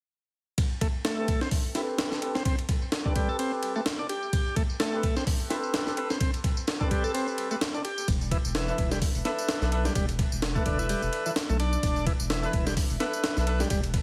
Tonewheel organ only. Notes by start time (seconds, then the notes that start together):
0.81 A3
1.05 A3
1.41 C4
1.75 E4
2.35 C4
2.45 C4
3.05 D4
3.16 G3
3.29 A4
3.39 C4
3.76 A3
3.99 D4
4.09 G4
4.56 A3
4.80 A3
5.17 C4
5.50 E4
6.10 C4
6.20 C4
6.81 D4
6.91 G3
7.04 A4
7.14 C4
7.51 A3
7.74 D4
7.84 G4
8.31 E3
8.55 E3
8.91 G3
9.25 B3
9.85 G3
9.95 G3
10.55 A3
10.66 D3
10.79 E4
10.89 G3
11.26 E3
11.49 A3
11.60 D4
12.07 E3
12.30 E3
12.66 G3
13.00 B3
13.60 G3
13.70 G3